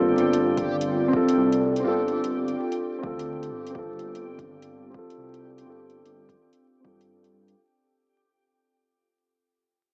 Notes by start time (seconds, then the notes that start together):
Already playing: G1 C4 D4 F4 G4 A4 D5 G5
0.18 closed hi-hat
0.34 closed hi-hat
0.52 A4
0.58 kick, closed hi-hat
0.81 closed hi-hat
1.08 C4
1.13 F4 A4, kick
1.29 closed hi-hat
1.37 C2
1.53 closed hi-hat
1.76 C4, closed hi-hat
1.84 G1 F4 A4
2.08 closed hi-hat
2.24 G1, closed hi-hat
2.48 closed hi-hat
2.72 closed hi-hat
2.99 C4
3.03 D2 F4 A4, kick
3.19 closed hi-hat
3.43 closed hi-hat
3.51 G1
3.67 C4, closed hi-hat
3.74 G1 F4, kick
3.78 A4
3.90 G4
3.99 closed hi-hat
4.15 closed hi-hat
4.38 kick, closed hi-hat
4.62 closed hi-hat
4.90 C4
4.94 F4 A4, kick
5.10 closed hi-hat
5.17 C2
5.34 closed hi-hat
5.58 C4, closed hi-hat
5.65 G1 F4
5.70 A4
5.90 closed hi-hat
6.05 G1, closed hi-hat
6.29 kick, closed hi-hat
6.53 closed hi-hat
6.80 C4 F4
6.85 G2 A4, kick
7.01 closed hi-hat
7.24 closed hi-hat
7.32 G2
7.48 closed hi-hat